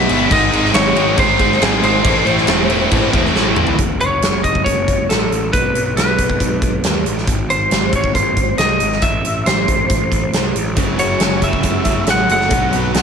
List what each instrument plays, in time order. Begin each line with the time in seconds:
Already playing: lead electric guitar E5
0.08 picked electric bass G1, distorted electric guitar B2 F#3 B3 D#4, crash
0.30 picked electric bass G#1, distorted electric guitar G#2 D#3 G#3 C4 D#4, lead electric guitar D#5, kick, crash
0.51 picked electric bass G#1, distorted electric guitar G#2 D#3 G#3 C4 D#4, crash
0.65 snare
0.72 picked electric bass G#1, distorted electric guitar G#2 D#3 G#3 C4 D#4, lead electric guitar C#5, snare, crash
0.95 picked electric bass G#1, distorted electric guitar G#2 D#3 G#3 C4 D#4, crash
1.15 picked electric bass G#1, distorted electric guitar G#2 D#3 G#3 C4 D#4, kick, crash
1.19 lead electric guitar C5
1.38 distorted electric guitar G#2 D#3 G#3 C4 D#4, kick, crash
1.52 snare
1.59 picked electric bass G#1, distorted electric guitar G#2 D#3 G#3 C4 D#4, lead electric guitar G#4, snare, crash
1.81 picked electric bass G#1, distorted electric guitar G#2 D#3 G#3 C4 D#4, lead electric guitar C5, crash
2.03 picked electric bass A1, distorted electric guitar A2 E3 A3 C4 E4, kick, crash
2.25 picked electric bass A1, distorted electric guitar A2 E3 A3 C4 E4, crash
2.38 snare
2.46 picked electric bass E1, distorted electric guitar A2 E3 A3 C4 E4, snare, crash
2.68 distorted electric guitar A2 E3 A3 C4 E4, crash
2.89 picked electric bass A1, distorted electric guitar A2 E3 A3 C4 E4, kick, crash
3.12 picked electric bass E2, distorted electric guitar A2 E3 A3 C4 E4, kick, crash
3.25 snare
3.33 picked electric bass A1, distorted electric guitar A2 E3 A3 C4 E4, snare
3.56 picked electric bass A1, distorted electric guitar A2 E3 A3 C4 E4, mid tom
3.67 floor tom
3.78 picked electric bass F#1, kick, closed hi-hat
4.00 picked electric bass F#1, lead electric guitar C#5, closed hi-hat
4.22 picked electric bass F#1, snare, closed hi-hat
4.44 picked electric bass F#1, lead electric guitar D#5, kick, closed hi-hat
4.55 kick
4.64 picked electric bass F#1, lead electric guitar C#5, kick, closed hi-hat
4.88 kick, closed hi-hat
5.09 picked electric bass A1, lead electric guitar A4, snare, closed hi-hat
5.31 picked electric bass A1, closed hi-hat
5.53 picked electric bass B1, lead electric guitar B4, kick, closed hi-hat
5.73 picked electric bass B1, closed hi-hat
5.95 picked electric bass B1, lead electric guitar B4, snare, closed hi-hat
6.18 picked electric bass B1, kick, closed hi-hat
6.30 kick
6.40 picked electric bass B1, kick, closed hi-hat
6.62 kick, closed hi-hat
6.83 picked electric bass D#2, snare, closed hi-hat
7.05 picked electric bass A1, closed hi-hat
7.18 snare
7.27 picked electric bass G#1, kick, closed hi-hat
7.49 picked electric bass G#1, lead electric guitar C5, closed hi-hat
7.70 picked electric bass G#1, snare, closed hi-hat
7.93 picked electric bass G#1, lead electric guitar C#5, kick, closed hi-hat
8.04 kick
8.14 picked electric bass G#1, lead electric guitar C5, kick, closed hi-hat
8.37 kick, closed hi-hat
8.58 picked electric bass C2, lead electric guitar D#5, snare, closed hi-hat
8.80 picked electric bass G#1, closed hi-hat
8.92 snare
9.02 picked electric bass A1, lead electric guitar E5, kick, closed hi-hat
9.25 picked electric bass A1, closed hi-hat
9.45 picked electric bass A1, lead electric guitar C5, snare, closed hi-hat
9.68 picked electric bass A1, kick, closed hi-hat
9.90 picked electric bass A1, kick, closed hi-hat
10.12 kick, closed hi-hat
10.33 picked electric bass C2, snare, closed hi-hat
10.55 picked electric bass A1, closed hi-hat
10.76 picked electric bass F#1, distorted electric guitar F#2 C#3 F#3, kick, closed hi-hat
10.98 picked electric bass F#1, distorted electric guitar F#2 C#3 F#3, lead electric guitar C#5, closed hi-hat
11.20 picked electric bass F#1, distorted electric guitar F#2 C#3 F#3, clean electric guitar C#4, snare, closed hi-hat
11.41 picked electric bass F#1, distorted electric guitar F#2 C#3 F#3, lead electric guitar E5, kick, closed hi-hat
11.53 kick
11.63 picked electric bass F#1, distorted electric guitar F#2 C#3 F#3, kick, closed hi-hat
11.84 distorted electric guitar F#2 C#3 F#3, kick, closed hi-hat
12.06 picked electric bass A1, distorted electric guitar F#2 C#3 F#3, clean electric guitar C#4, snare, closed hi-hat
12.10 lead electric guitar F#5
12.29 picked electric bass F#1, distorted electric guitar F#2 C#3 F#3, clean electric guitar A3, lead electric guitar F#5, closed hi-hat
12.41 snare
12.49 picked electric bass B1, distorted electric guitar B2 F#3 B3, kick, closed hi-hat
12.71 picked electric bass B1, distorted electric guitar B2 F#3 B3, closed hi-hat
12.93 picked electric bass B1, distorted electric guitar B2 F#3 B3, clean electric guitar D#4, snare, closed hi-hat